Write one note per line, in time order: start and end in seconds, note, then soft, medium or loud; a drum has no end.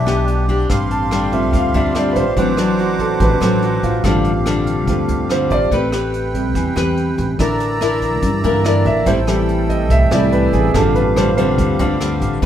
0.00 0.66 B1 medium
0.00 0.68 B2 medium
0.00 0.68 E3 medium
0.00 0.68 D4 medium
0.00 0.65 G4 soft
0.00 0.68 G4 medium
0.00 0.66 B4 soft
0.00 0.68 D5 soft
0.00 0.29 E5 medium
0.00 0.68 F#5 soft
0.06 0.45 B3 medium
0.06 0.46 D4 soft
0.06 0.46 G4 medium
0.06 cross-stick medium
0.06 closed hi-hat soft
0.28 closed hi-hat soft
0.49 1.10 C4 medium
0.49 1.10 D4 medium
0.49 1.10 G4 medium
0.49 kick soft
0.49 closed hi-hat soft
0.69 1.53 A1 medium
0.69 1.51 G2 medium
0.69 2.35 G4 medium
0.69 2.35 F5 medium
0.69 2.35 C6 medium
0.69 kick medium
0.69 cross-stick medium
0.69 closed hi-hat medium
0.91 1.11 A5 medium
0.91 closed hi-hat soft
1.11 1.71 D3 medium
1.11 1.71 G3 medium
1.11 1.71 C4 medium
1.11 1.72 D4 medium
1.11 1.32 G5 medium
1.11 cross-stick medium
1.11 closed hi-hat soft
1.32 2.33 F3 soft
1.32 2.33 A3 soft
1.32 2.33 C4 soft
1.32 1.53 E5 medium
1.32 kick soft
1.32 closed hi-hat soft
1.53 1.73 D2 medium
1.53 2.34 G2 soft
1.53 1.74 F5 medium
1.53 kick medium
1.53 closed hi-hat medium
1.74 2.13 D2 loud
1.74 1.92 D3 medium
1.74 1.92 G3 medium
1.74 1.92 C4 medium
1.74 1.92 D4 medium
1.74 1.95 E5 medium
1.74 closed hi-hat soft
1.95 2.23 D3 soft
1.95 2.23 G3 medium
1.95 2.24 C4 medium
1.95 2.24 D4 medium
1.95 2.16 D5 medium
1.95 cross-stick medium
1.95 closed hi-hat soft
2.12 2.35 A1 medium
2.12 2.15 B4 soft
2.12 kick soft
2.12 closed hi-hat soft
2.16 2.36 C5 medium
2.36 3.16 A1 medium
2.36 3.18 A2 medium
2.36 2.65 E3 soft
2.36 2.54 F#3 medium
2.36 2.65 F#3 soft
2.36 2.55 C4 soft
2.36 2.65 C4 soft
2.36 2.55 D4 medium
2.36 2.58 B4 soft
2.36 4.02 C5 medium
2.36 4.03 F#5 medium
2.36 4.02 D6 medium
2.36 kick medium
2.36 closed hi-hat medium
2.57 3.38 F#3 medium
2.57 3.38 C4 medium
2.57 2.78 D4 soft
2.57 3.39 D4 medium
2.57 cross-stick medium
2.57 closed hi-hat soft
2.79 3.00 F#4 medium
2.79 closed hi-hat soft
2.99 3.20 A4 medium
2.99 kick soft
2.99 closed hi-hat soft
3.20 3.40 A1 loud
3.20 4.02 A2 medium
3.20 3.42 B4 medium
3.20 kick medium
3.20 closed hi-hat medium
3.41 3.80 A1 loud
3.41 3.61 E3 soft
3.41 4.01 F#3 medium
3.41 3.61 F#3 soft
3.41 4.01 C4 medium
3.41 3.61 C4 soft
3.41 4.01 D4 medium
3.41 3.62 A4 medium
3.41 cross-stick medium
3.41 closed hi-hat soft
3.62 3.83 F#4 medium
3.62 closed hi-hat soft
3.83 4.03 A1 medium
3.83 4.42 F4 medium
3.83 kick soft
3.83 closed hi-hat soft
4.04 4.88 A1 medium
4.04 4.85 G2 medium
4.04 4.31 D3 medium
4.04 4.87 F3 soft
4.04 4.31 G3 medium
4.04 4.87 A3 soft
4.04 4.31 C4 medium
4.04 4.88 C4 soft
4.04 4.31 D4 medium
4.04 5.69 G4 medium
4.04 5.70 F5 medium
4.04 kick medium
4.04 cross-stick medium
4.04 closed hi-hat medium
4.24 closed hi-hat soft
4.46 5.26 D3 medium
4.46 5.26 G3 medium
4.46 5.27 C4 medium
4.46 5.27 D4 medium
4.46 cross-stick medium
4.46 closed hi-hat soft
4.67 kick soft
4.67 closed hi-hat soft
4.87 5.07 D2 medium
4.87 5.70 G2 medium
4.87 5.07 F3 soft
4.87 5.07 A3 soft
4.87 5.07 C4 soft
4.87 kick medium
4.87 closed hi-hat medium
5.09 5.47 D2 medium
5.09 closed hi-hat soft
5.30 5.58 D3 medium
5.30 5.58 G3 medium
5.30 5.58 C4 medium
5.30 5.59 D4 medium
5.30 5.51 C5 medium
5.30 cross-stick medium
5.30 closed hi-hat soft
5.50 5.70 A1 medium
5.50 5.71 D5 medium
5.50 kick soft
5.50 closed hi-hat soft
5.71 6.55 A1 medium
5.71 6.53 A3 medium
5.71 5.89 C4 medium
5.71 5.89 G4 medium
5.71 7.37 B4 medium
5.71 5.90 B4 medium
5.71 5.93 B4 soft
5.71 7.38 G5 medium
5.71 kick medium
5.71 closed hi-hat medium
5.92 6.73 C4 medium
5.92 6.73 G4 medium
5.92 6.73 B4 medium
5.92 cross-stick medium
5.92 closed hi-hat soft
6.14 closed hi-hat soft
6.34 6.94 C3 soft
6.34 6.94 G3 soft
6.34 kick soft
6.34 closed hi-hat soft
6.55 6.75 E2 loud
6.55 7.37 E3 medium
6.55 kick medium
6.55 closed hi-hat medium
6.76 7.15 E2 loud
6.76 7.36 C4 medium
6.76 7.36 G4 medium
6.76 7.36 B4 medium
6.76 cross-stick medium
6.76 closed hi-hat soft
6.97 closed hi-hat soft
7.18 7.37 A1 medium
7.18 kick soft
7.18 closed hi-hat soft
7.39 8.23 A1 medium
7.39 7.99 D3 soft
7.39 7.99 E3 soft
7.39 7.78 D4 medium
7.39 7.78 E4 medium
7.39 7.78 A#4 medium
7.39 9.05 D5 medium
7.39 9.05 A#5 medium
7.39 10.72 E6 medium
7.39 kick medium
7.39 cross-stick medium
7.39 closed hi-hat medium
7.60 closed hi-hat soft
7.81 8.41 D4 medium
7.81 8.41 E4 medium
7.81 8.41 A#4 medium
7.81 cross-stick medium
7.81 closed hi-hat soft
8.02 kick soft
8.02 closed hi-hat soft
8.22 8.42 G2 loud
8.22 kick medium
8.22 closed hi-hat medium
8.44 8.83 G2 loud
8.44 8.62 D3 soft
8.44 8.63 E3 soft
8.44 8.63 A#3 soft
8.44 8.61 D4 medium
8.44 8.62 E4 medium
8.44 8.62 A#4 medium
8.44 closed hi-hat soft
8.65 9.05 D4 medium
8.65 9.05 E4 medium
8.65 9.06 A#4 medium
8.65 8.86 D5 medium
8.65 cross-stick medium
8.65 closed hi-hat soft
8.85 9.05 A1 medium
8.85 9.06 E5 medium
8.85 kick soft
8.85 closed hi-hat soft
9.06 9.90 A1 medium
9.06 9.88 A2 medium
9.06 9.19 G3 medium
9.06 9.19 C4 medium
9.06 9.19 E4 medium
9.06 10.73 A4 medium
9.06 9.20 C5 medium
9.06 10.72 G5 medium
9.06 kick medium
9.06 closed hi-hat medium
9.27 9.87 E3 soft
9.27 9.87 G3 soft
9.27 10.08 G3 medium
9.27 9.88 A3 soft
9.27 10.09 C4 medium
9.27 10.09 E4 medium
9.27 cross-stick medium
9.27 closed hi-hat soft
9.49 closed hi-hat soft
9.69 9.90 D#5 medium
9.69 kick soft
9.69 closed hi-hat soft
9.90 10.10 C2 loud
9.90 10.72 A2 medium
9.90 10.11 E5 medium
9.90 kick medium
9.90 closed hi-hat medium
10.11 10.50 C2 loud
10.11 10.30 E3 soft
10.11 10.30 G3 soft
10.11 10.71 G3 medium
10.11 10.31 A3 soft
10.11 10.72 C4 medium
10.11 10.72 E4 medium
10.11 10.32 D5 medium
10.11 cross-stick medium
10.11 closed hi-hat soft
10.32 10.53 B4 medium
10.32 closed hi-hat soft
10.53 10.73 A1 medium
10.53 10.74 G#4 medium
10.53 kick soft
10.53 closed hi-hat soft
10.73 11.58 A1 loud
10.73 11.56 G2 medium
10.73 11.02 C3 soft
10.73 11.01 D3 medium
10.73 11.02 F3 soft
10.73 11.02 G3 medium
10.73 11.03 A3 soft
10.73 11.02 C4 medium
10.73 11.02 D4 medium
10.73 12.41 G4 medium
10.73 10.95 A4 medium
10.73 12.40 F5 medium
10.73 kick medium
10.73 cross-stick medium
10.73 closed hi-hat medium
10.95 11.16 B4 medium
10.95 closed hi-hat soft
11.16 11.29 D3 medium
11.16 11.29 G3 medium
11.16 11.29 C4 medium
11.16 11.30 D4 medium
11.16 11.36 C5 medium
11.16 cross-stick medium
11.16 closed hi-hat soft
11.37 11.76 D3 medium
11.37 11.77 G3 medium
11.37 11.77 C4 medium
11.37 11.77 D4 medium
11.37 12.38 C5 medium
11.37 kick soft
11.37 closed hi-hat medium
11.58 11.78 D2 loud
11.58 12.41 G2 medium
11.58 kick medium
11.58 closed hi-hat medium
11.79 12.18 D2 loud
11.79 11.97 D3 medium
11.79 11.97 G3 medium
11.79 11.97 C4 medium
11.79 11.98 D4 medium
11.79 closed hi-hat medium
12.01 12.41 D3 medium
12.01 12.41 G3 medium
12.01 12.41 C4 medium
12.01 12.41 D4 medium
12.01 cross-stick medium
12.01 closed hi-hat soft
12.21 12.41 A1 medium
12.21 kick soft
12.21 closed hi-hat medium
12.42 12.46 A1 medium
12.42 12.46 A3 medium
12.42 12.46 C4 medium
12.42 12.46 B4 medium
12.42 kick medium